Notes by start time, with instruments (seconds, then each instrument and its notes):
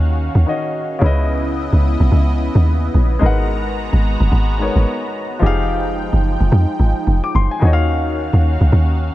Already playing: log drum bass D#2, grand piano D#3 D#4 F#4 C#5 F5, analog synth pad D#3 C#4 F#4 F5
0.35 log drum bass D#2
0.46 grand piano D#3 D#4 F#4 C#5 D#5
0.99 log drum bass C#2, grand piano C#3 C#4 E4, analog synth pad C#3 B3 E4 D#5
1.04 grand piano B4 D#5
1.73 log drum bass C#2
2.00 log drum bass B1
2.12 log drum bass C#2
2.55 log drum bass D#2
2.94 log drum bass A#1
3.19 log drum bass G#1, grand piano G#3 D#4 A#4, analog synth pad G#3 B3 F#4 A#5
3.24 grand piano B4 F#5
3.93 log drum bass G#1
4.20 log drum bass F#1
4.32 log drum bass G#1
4.58 grand piano G#3 D#4 A#4 B4 C#5
4.75 log drum bass G#1
5.39 log drum bass F1, grand piano F3 D#4 G4, analog synth pad F3 G#3 D#4 G5
5.45 grand piano G#4 F5
6.13 log drum bass F#1
6.40 log drum bass F1
6.52 log drum bass F2
6.80 log drum bass G#1
7.07 log drum bass F1
7.24 grand piano D6
7.35 log drum bass F#1, grand piano C6
7.51 grand piano G#5
7.60 log drum bass D#2, grand piano D#3 D#4 F#4, analog synth pad D#3 C#4 F#4 F5
7.65 grand piano C#5 D#5
7.73 grand piano F5
8.33 log drum bass D#2
8.61 log drum bass C#2
8.72 log drum bass D#2